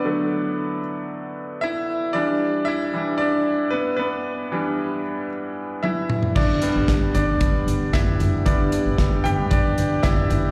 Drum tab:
CC |----------------|----------------|----------------|x---------------|
HH |----------------|----------------|----------------|--x-x-x-x-x-x-x-|
SD |----------------|----------------|----------------|----o-------o---|
T1 |----------------|----------------|------------o---|----------------|
T2 |----------------|----------------|--------------o-|----------------|
FT |----------------|----------------|---------------o|------o------oo-|
BD |----------------|----------------|----------------|o---o---o---o---|

CC |----------------|
HH |x-x-x-x-x-x-x-x-|
SD |----o-------o---|
T1 |----------------|
T2 |----------------|
FT |------o------oo-|
BD |o---o---o---o---|